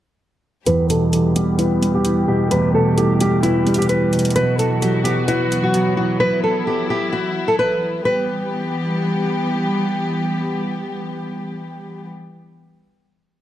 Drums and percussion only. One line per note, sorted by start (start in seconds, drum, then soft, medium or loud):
0.66 closed hi-hat medium
0.90 closed hi-hat medium
1.13 closed hi-hat medium
1.36 closed hi-hat medium
1.59 closed hi-hat medium
1.83 closed hi-hat medium
2.05 closed hi-hat medium
2.51 closed hi-hat medium
2.98 closed hi-hat medium
3.20 closed hi-hat medium
3.43 closed hi-hat medium
3.67 closed hi-hat soft
3.74 closed hi-hat medium
3.82 closed hi-hat medium
3.89 closed hi-hat medium
4.13 closed hi-hat soft
4.19 closed hi-hat medium
4.25 closed hi-hat medium
4.30 closed hi-hat medium
4.36 closed hi-hat medium
4.59 closed hi-hat medium
4.82 closed hi-hat medium
5.05 closed hi-hat medium
5.28 closed hi-hat medium
5.52 closed hi-hat medium
5.74 closed hi-hat medium